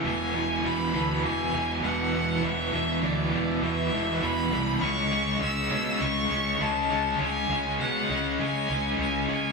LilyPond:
<<
  \new Staff \with { instrumentName = "Violin" } { \time 4/4 \key e \mixolydian \tempo 4 = 100 gis''4 b''4 gis''4 fis''4 | e''4 d''4 e''4 b''4 | cis'''4 e'''4 cis'''4 a''4 | gis''4 fis''4 gis''4 gis''8 gis''8 | }
  \new Staff \with { instrumentName = "Overdriven electric guitar" } { \clef bass \time 4/4 \key e \mixolydian <e, b, e>8 <e, b, e>8 <e, b, e>8 <e, b, e>8 <e, b, e>8 <e, b, e>8 <e, b, e>8 <e, b, e>8 | <e, b, e>8 <e, b, e>8 <e, b, e>8 <e, b, e>8 <e, b, e>8 <e, b, e>8 <e, b, e>8 <e, b, e>8 | <cis gis cis'>8 <cis gis cis'>8 <cis gis cis'>8 <cis gis cis'>8 <cis gis cis'>8 <cis gis cis'>8 <cis gis cis'>8 <cis gis cis'>8 | <cis gis cis'>8 <cis gis cis'>8 <cis gis cis'>8 <cis gis cis'>8 <cis gis cis'>8 <cis gis cis'>8 <cis gis cis'>8 <cis gis cis'>8 | }
  \new Staff \with { instrumentName = "Fingered electric bass" } { \clef bass \time 4/4 \key e \mixolydian e,,4 e,,8 d,8 e,,8 e,,8 e,,4 | e,,8 e,,8 d,8 e,,8 e,8 e,,8 e,,8 c,8 | cis,4 cis,8 b,8 cis,8 cis,8 cis,4 | cis,8 cis,8 b,8 cis,8 cis8 cis,8 cis,8 cis8 | }
>>